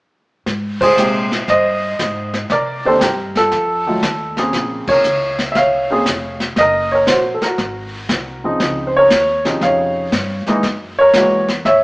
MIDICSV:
0, 0, Header, 1, 5, 480
1, 0, Start_track
1, 0, Key_signature, -4, "major"
1, 0, Tempo, 508475
1, 444, Time_signature, 4, 2, 24, 8
1, 11173, End_track
2, 0, Start_track
2, 0, Title_t, "Grand piano"
2, 0, Program_c, 0, 0
2, 762, Note_on_c, 0, 72, 98
2, 785, Note_on_c, 0, 68, 75
2, 920, Note_on_c, 0, 48, 61
2, 924, Note_on_c, 0, 56, 54
2, 928, Note_on_c, 0, 58, 50
2, 936, Note_on_c, 0, 67, 64
2, 1212, Note_off_c, 0, 72, 0
2, 1215, Note_off_c, 0, 48, 0
2, 1216, Note_off_c, 0, 56, 0
2, 1218, Note_off_c, 0, 58, 0
2, 1222, Note_off_c, 0, 67, 0
2, 1224, Note_off_c, 0, 68, 0
2, 1411, Note_on_c, 0, 75, 86
2, 1427, Note_on_c, 0, 72, 65
2, 2174, Note_off_c, 0, 75, 0
2, 2183, Note_off_c, 0, 72, 0
2, 2377, Note_on_c, 0, 74, 92
2, 2387, Note_on_c, 0, 70, 79
2, 2678, Note_off_c, 0, 70, 0
2, 2692, Note_on_c, 0, 48, 63
2, 2696, Note_on_c, 0, 51, 52
2, 2700, Note_on_c, 0, 58, 50
2, 2702, Note_on_c, 0, 72, 87
2, 2705, Note_off_c, 0, 74, 0
2, 2705, Note_on_c, 0, 62, 60
2, 2713, Note_on_c, 0, 69, 67
2, 2830, Note_off_c, 0, 48, 0
2, 2831, Note_off_c, 0, 51, 0
2, 2834, Note_off_c, 0, 58, 0
2, 2836, Note_off_c, 0, 62, 0
2, 2845, Note_off_c, 0, 69, 0
2, 2852, Note_on_c, 0, 70, 73
2, 2854, Note_on_c, 0, 67, 65
2, 2855, Note_off_c, 0, 72, 0
2, 3150, Note_off_c, 0, 70, 0
2, 3151, Note_off_c, 0, 67, 0
2, 3183, Note_on_c, 0, 69, 85
2, 3192, Note_on_c, 0, 65, 51
2, 3653, Note_on_c, 0, 51, 53
2, 3655, Note_off_c, 0, 65, 0
2, 3660, Note_on_c, 0, 54, 53
2, 3664, Note_on_c, 0, 57, 53
2, 3669, Note_on_c, 0, 65, 64
2, 3789, Note_off_c, 0, 51, 0
2, 3793, Note_off_c, 0, 54, 0
2, 3795, Note_off_c, 0, 57, 0
2, 3798, Note_off_c, 0, 65, 0
2, 4097, Note_off_c, 0, 69, 0
2, 4135, Note_on_c, 0, 58, 54
2, 4137, Note_on_c, 0, 49, 58
2, 4143, Note_on_c, 0, 68, 63
2, 4144, Note_on_c, 0, 60, 57
2, 4612, Note_on_c, 0, 73, 89
2, 4640, Note_on_c, 0, 70, 73
2, 4735, Note_off_c, 0, 49, 0
2, 4735, Note_off_c, 0, 58, 0
2, 4739, Note_off_c, 0, 60, 0
2, 4739, Note_off_c, 0, 68, 0
2, 5055, Note_off_c, 0, 73, 0
2, 5071, Note_off_c, 0, 70, 0
2, 5209, Note_on_c, 0, 76, 72
2, 5246, Note_off_c, 0, 76, 0
2, 5252, Note_on_c, 0, 77, 89
2, 5274, Note_on_c, 0, 73, 67
2, 5574, Note_on_c, 0, 49, 60
2, 5580, Note_on_c, 0, 58, 55
2, 5583, Note_on_c, 0, 60, 55
2, 5590, Note_on_c, 0, 68, 66
2, 5709, Note_off_c, 0, 49, 0
2, 5712, Note_off_c, 0, 58, 0
2, 5714, Note_off_c, 0, 60, 0
2, 5717, Note_off_c, 0, 68, 0
2, 6013, Note_off_c, 0, 77, 0
2, 6024, Note_off_c, 0, 73, 0
2, 6214, Note_on_c, 0, 75, 94
2, 6234, Note_on_c, 0, 70, 82
2, 6520, Note_off_c, 0, 70, 0
2, 6530, Note_on_c, 0, 73, 79
2, 6541, Note_off_c, 0, 75, 0
2, 6560, Note_on_c, 0, 70, 69
2, 6672, Note_on_c, 0, 72, 78
2, 6687, Note_off_c, 0, 70, 0
2, 6687, Note_off_c, 0, 73, 0
2, 6709, Note_on_c, 0, 66, 59
2, 6914, Note_off_c, 0, 66, 0
2, 6918, Note_off_c, 0, 72, 0
2, 6933, Note_on_c, 0, 69, 49
2, 7008, Note_on_c, 0, 70, 80
2, 7013, Note_off_c, 0, 69, 0
2, 7046, Note_on_c, 0, 66, 55
2, 7928, Note_off_c, 0, 70, 0
2, 7947, Note_off_c, 0, 66, 0
2, 7968, Note_on_c, 0, 49, 56
2, 7972, Note_on_c, 0, 53, 53
2, 7975, Note_on_c, 0, 60, 52
2, 7979, Note_on_c, 0, 63, 63
2, 8373, Note_on_c, 0, 72, 65
2, 8453, Note_off_c, 0, 72, 0
2, 8463, Note_on_c, 0, 73, 101
2, 8483, Note_on_c, 0, 70, 71
2, 8570, Note_off_c, 0, 49, 0
2, 8571, Note_off_c, 0, 53, 0
2, 8573, Note_off_c, 0, 60, 0
2, 8575, Note_off_c, 0, 63, 0
2, 8900, Note_off_c, 0, 73, 0
2, 8911, Note_off_c, 0, 70, 0
2, 8921, Note_on_c, 0, 49, 54
2, 8925, Note_on_c, 0, 53, 49
2, 8932, Note_on_c, 0, 48, 52
2, 8932, Note_on_c, 0, 63, 59
2, 9086, Note_on_c, 0, 77, 83
2, 9108, Note_on_c, 0, 73, 67
2, 9526, Note_off_c, 0, 49, 0
2, 9528, Note_off_c, 0, 53, 0
2, 9531, Note_off_c, 0, 48, 0
2, 9531, Note_off_c, 0, 63, 0
2, 9849, Note_off_c, 0, 77, 0
2, 9860, Note_off_c, 0, 73, 0
2, 9891, Note_on_c, 0, 52, 72
2, 9895, Note_on_c, 0, 56, 63
2, 9897, Note_on_c, 0, 58, 64
2, 9907, Note_on_c, 0, 63, 79
2, 10026, Note_off_c, 0, 52, 0
2, 10029, Note_off_c, 0, 56, 0
2, 10030, Note_off_c, 0, 58, 0
2, 10035, Note_off_c, 0, 63, 0
2, 10370, Note_on_c, 0, 73, 98
2, 10394, Note_on_c, 0, 70, 78
2, 10531, Note_on_c, 0, 52, 52
2, 10537, Note_on_c, 0, 56, 51
2, 10539, Note_on_c, 0, 66, 64
2, 10541, Note_on_c, 0, 58, 52
2, 10814, Note_off_c, 0, 73, 0
2, 10818, Note_off_c, 0, 52, 0
2, 10820, Note_off_c, 0, 56, 0
2, 10821, Note_off_c, 0, 66, 0
2, 10823, Note_off_c, 0, 58, 0
2, 10827, Note_off_c, 0, 70, 0
2, 11004, Note_on_c, 0, 76, 92
2, 11022, Note_on_c, 0, 73, 73
2, 11173, Note_off_c, 0, 73, 0
2, 11173, Note_off_c, 0, 76, 0
2, 11173, End_track
3, 0, Start_track
3, 0, Title_t, "Upright bass"
3, 0, Program_c, 1, 32
3, 437, Note_on_c, 1, 44, 69
3, 906, Note_off_c, 1, 44, 0
3, 915, Note_on_c, 1, 46, 73
3, 1385, Note_off_c, 1, 46, 0
3, 1398, Note_on_c, 1, 43, 77
3, 1866, Note_off_c, 1, 43, 0
3, 1882, Note_on_c, 1, 44, 89
3, 2348, Note_off_c, 1, 44, 0
3, 2360, Note_on_c, 1, 48, 65
3, 2827, Note_off_c, 1, 48, 0
3, 2844, Note_on_c, 1, 43, 77
3, 3309, Note_off_c, 1, 43, 0
3, 3319, Note_on_c, 1, 41, 70
3, 3786, Note_off_c, 1, 41, 0
3, 3801, Note_on_c, 1, 39, 87
3, 4267, Note_off_c, 1, 39, 0
3, 4280, Note_on_c, 1, 34, 72
3, 4583, Note_off_c, 1, 34, 0
3, 4765, Note_on_c, 1, 37, 71
3, 5229, Note_off_c, 1, 37, 0
3, 5240, Note_on_c, 1, 36, 70
3, 5706, Note_off_c, 1, 36, 0
3, 5719, Note_on_c, 1, 29, 80
3, 6185, Note_off_c, 1, 29, 0
3, 6200, Note_on_c, 1, 30, 77
3, 6665, Note_off_c, 1, 30, 0
3, 6674, Note_on_c, 1, 34, 74
3, 6978, Note_off_c, 1, 34, 0
3, 7159, Note_on_c, 1, 32, 78
3, 7624, Note_off_c, 1, 32, 0
3, 7636, Note_on_c, 1, 36, 79
3, 8102, Note_off_c, 1, 36, 0
3, 8118, Note_on_c, 1, 37, 69
3, 8584, Note_off_c, 1, 37, 0
3, 8594, Note_on_c, 1, 39, 75
3, 9062, Note_off_c, 1, 39, 0
3, 9072, Note_on_c, 1, 41, 77
3, 9541, Note_off_c, 1, 41, 0
3, 9553, Note_on_c, 1, 43, 87
3, 9858, Note_off_c, 1, 43, 0
3, 10035, Note_on_c, 1, 42, 73
3, 10503, Note_off_c, 1, 42, 0
3, 10513, Note_on_c, 1, 40, 74
3, 10982, Note_off_c, 1, 40, 0
3, 10998, Note_on_c, 1, 39, 74
3, 11173, Note_off_c, 1, 39, 0
3, 11173, End_track
4, 0, Start_track
4, 0, Title_t, "Muted upright bass strokes"
4, 4604, Note_on_c, 9, 29, 38
4, 4698, Note_off_c, 9, 29, 0
4, 7004, Note_on_c, 9, 29, 35
4, 7099, Note_off_c, 9, 29, 0
4, 9880, Note_on_c, 9, 29, 37
4, 9974, Note_off_c, 9, 29, 0
4, 11173, End_track
5, 0, Start_track
5, 0, Title_t, "Drums"
5, 438, Note_on_c, 9, 25, 47
5, 438, Note_on_c, 9, 36, 24
5, 438, Note_on_c, 9, 38, 38
5, 532, Note_off_c, 9, 38, 0
5, 533, Note_off_c, 9, 36, 0
5, 764, Note_on_c, 9, 36, 72
5, 767, Note_on_c, 9, 51, 58
5, 859, Note_off_c, 9, 36, 0
5, 861, Note_off_c, 9, 51, 0
5, 920, Note_on_c, 9, 44, 51
5, 1014, Note_off_c, 9, 44, 0
5, 1243, Note_on_c, 9, 38, 35
5, 1338, Note_off_c, 9, 38, 0
5, 1397, Note_off_c, 9, 25, 0
5, 1397, Note_on_c, 9, 25, 40
5, 1397, Note_on_c, 9, 36, 21
5, 1397, Note_on_c, 9, 38, 35
5, 1492, Note_off_c, 9, 36, 0
5, 1492, Note_off_c, 9, 38, 0
5, 1879, Note_on_c, 9, 36, 21
5, 1881, Note_on_c, 9, 38, 51
5, 1883, Note_on_c, 9, 44, 44
5, 1973, Note_off_c, 9, 36, 0
5, 1975, Note_off_c, 9, 38, 0
5, 1977, Note_off_c, 9, 44, 0
5, 2205, Note_on_c, 9, 38, 30
5, 2299, Note_off_c, 9, 38, 0
5, 2358, Note_off_c, 9, 25, 0
5, 2358, Note_on_c, 9, 25, 45
5, 2358, Note_on_c, 9, 38, 37
5, 2359, Note_on_c, 9, 36, 22
5, 2452, Note_off_c, 9, 38, 0
5, 2453, Note_off_c, 9, 36, 0
5, 2841, Note_on_c, 9, 36, 17
5, 2841, Note_on_c, 9, 38, 56
5, 2843, Note_on_c, 9, 44, 57
5, 2935, Note_off_c, 9, 36, 0
5, 2935, Note_off_c, 9, 38, 0
5, 2937, Note_off_c, 9, 44, 0
5, 3166, Note_on_c, 9, 38, 34
5, 3260, Note_off_c, 9, 38, 0
5, 3319, Note_off_c, 9, 25, 0
5, 3319, Note_on_c, 9, 25, 41
5, 3319, Note_on_c, 9, 38, 38
5, 3320, Note_on_c, 9, 36, 19
5, 3414, Note_off_c, 9, 38, 0
5, 3415, Note_off_c, 9, 36, 0
5, 3800, Note_on_c, 9, 38, 51
5, 3801, Note_on_c, 9, 36, 19
5, 3802, Note_on_c, 9, 44, 52
5, 3894, Note_off_c, 9, 38, 0
5, 3895, Note_off_c, 9, 36, 0
5, 3896, Note_off_c, 9, 44, 0
5, 4123, Note_on_c, 9, 38, 33
5, 4217, Note_off_c, 9, 38, 0
5, 4276, Note_off_c, 9, 25, 0
5, 4276, Note_on_c, 9, 25, 43
5, 4276, Note_on_c, 9, 38, 40
5, 4279, Note_on_c, 9, 36, 24
5, 4371, Note_off_c, 9, 38, 0
5, 4374, Note_off_c, 9, 36, 0
5, 4600, Note_on_c, 9, 51, 60
5, 4604, Note_on_c, 9, 36, 72
5, 4694, Note_off_c, 9, 51, 0
5, 4698, Note_off_c, 9, 36, 0
5, 4757, Note_on_c, 9, 44, 51
5, 4852, Note_off_c, 9, 44, 0
5, 5084, Note_on_c, 9, 38, 33
5, 5178, Note_off_c, 9, 38, 0
5, 5239, Note_off_c, 9, 25, 0
5, 5239, Note_on_c, 9, 25, 39
5, 5239, Note_on_c, 9, 38, 39
5, 5240, Note_on_c, 9, 36, 23
5, 5334, Note_off_c, 9, 36, 0
5, 5334, Note_off_c, 9, 38, 0
5, 5719, Note_on_c, 9, 36, 24
5, 5719, Note_on_c, 9, 38, 48
5, 5721, Note_on_c, 9, 44, 49
5, 5813, Note_off_c, 9, 36, 0
5, 5813, Note_off_c, 9, 38, 0
5, 5815, Note_off_c, 9, 44, 0
5, 6042, Note_on_c, 9, 38, 32
5, 6136, Note_off_c, 9, 38, 0
5, 6194, Note_off_c, 9, 25, 0
5, 6194, Note_on_c, 9, 25, 44
5, 6194, Note_on_c, 9, 38, 39
5, 6198, Note_on_c, 9, 36, 17
5, 6289, Note_off_c, 9, 38, 0
5, 6292, Note_off_c, 9, 36, 0
5, 6674, Note_on_c, 9, 38, 53
5, 6676, Note_on_c, 9, 44, 56
5, 6677, Note_on_c, 9, 36, 22
5, 6769, Note_off_c, 9, 38, 0
5, 6771, Note_off_c, 9, 36, 0
5, 6771, Note_off_c, 9, 44, 0
5, 7002, Note_on_c, 9, 38, 37
5, 7096, Note_off_c, 9, 38, 0
5, 7157, Note_off_c, 9, 25, 0
5, 7157, Note_on_c, 9, 25, 48
5, 7157, Note_on_c, 9, 36, 17
5, 7157, Note_on_c, 9, 38, 38
5, 7251, Note_off_c, 9, 36, 0
5, 7251, Note_off_c, 9, 38, 0
5, 7637, Note_on_c, 9, 36, 15
5, 7639, Note_on_c, 9, 38, 50
5, 7641, Note_on_c, 9, 44, 53
5, 7731, Note_off_c, 9, 36, 0
5, 7733, Note_off_c, 9, 38, 0
5, 7735, Note_off_c, 9, 44, 0
5, 8116, Note_on_c, 9, 36, 18
5, 8117, Note_off_c, 9, 25, 0
5, 8117, Note_on_c, 9, 25, 45
5, 8117, Note_on_c, 9, 38, 38
5, 8210, Note_off_c, 9, 36, 0
5, 8212, Note_off_c, 9, 38, 0
5, 8594, Note_on_c, 9, 38, 56
5, 8596, Note_on_c, 9, 36, 20
5, 8596, Note_on_c, 9, 44, 51
5, 8688, Note_off_c, 9, 38, 0
5, 8690, Note_off_c, 9, 36, 0
5, 8690, Note_off_c, 9, 44, 0
5, 8920, Note_on_c, 9, 38, 37
5, 9015, Note_off_c, 9, 38, 0
5, 9074, Note_on_c, 9, 36, 25
5, 9075, Note_off_c, 9, 25, 0
5, 9075, Note_on_c, 9, 25, 48
5, 9075, Note_on_c, 9, 38, 36
5, 9169, Note_off_c, 9, 36, 0
5, 9169, Note_off_c, 9, 38, 0
5, 9555, Note_on_c, 9, 36, 22
5, 9555, Note_on_c, 9, 38, 51
5, 9557, Note_on_c, 9, 44, 52
5, 9649, Note_off_c, 9, 36, 0
5, 9650, Note_off_c, 9, 38, 0
5, 9652, Note_off_c, 9, 44, 0
5, 9879, Note_on_c, 9, 38, 32
5, 9973, Note_off_c, 9, 38, 0
5, 10034, Note_off_c, 9, 25, 0
5, 10034, Note_on_c, 9, 25, 46
5, 10034, Note_on_c, 9, 36, 18
5, 10034, Note_on_c, 9, 38, 37
5, 10129, Note_off_c, 9, 36, 0
5, 10129, Note_off_c, 9, 38, 0
5, 10511, Note_on_c, 9, 38, 49
5, 10513, Note_on_c, 9, 44, 54
5, 10514, Note_on_c, 9, 36, 23
5, 10605, Note_off_c, 9, 38, 0
5, 10607, Note_off_c, 9, 44, 0
5, 10609, Note_off_c, 9, 36, 0
5, 10840, Note_on_c, 9, 38, 35
5, 10935, Note_off_c, 9, 38, 0
5, 10998, Note_on_c, 9, 36, 21
5, 11000, Note_off_c, 9, 25, 0
5, 11000, Note_on_c, 9, 25, 40
5, 11000, Note_on_c, 9, 38, 36
5, 11092, Note_off_c, 9, 36, 0
5, 11094, Note_off_c, 9, 38, 0
5, 11173, Note_off_c, 9, 25, 0
5, 11173, End_track
0, 0, End_of_file